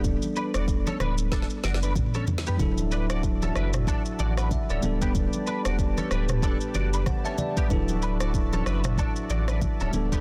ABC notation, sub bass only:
X:1
M:4/4
L:1/16
Q:"Swing 16ths" 1/4=94
K:D
V:1 name="Sub bass" clef=bass
D,,,2 z E,,,3 D,,,4 F,,,3 z3 | D,,,6 F,,,3 z A,,,3 D,,, D,,,2- | D,,,2 z E,,,3 D,,,4 F,,,3 z3 | D,,,6 F,,,3 z A,,,3 D,,, D,,,2 |]